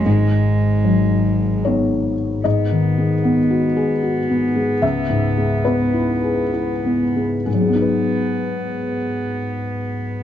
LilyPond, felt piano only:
<<
  \new Staff \with { instrumentName = "Felt piano" } { \time 3/4 \key gis \minor \tempo 4 = 73 r2 cis''4 | dis''2. | e''4 b'4 r4 | <gis, fis gis b dis' gis' b'>2. | }
  \new Staff \with { instrumentName = "Felt piano" } { \time 3/4 \key gis \minor gis,4 fis4 <b dis'>4 | \tuplet 3/2 { gis,8 dis8 gis8 b8 fis'8 gis'8 fis'8 b8 gis8 } | \tuplet 3/2 { cis,8 gis,8 gis8 b8 e'8 gis'8 e'8 b8 gis8 } | r2. | }
>>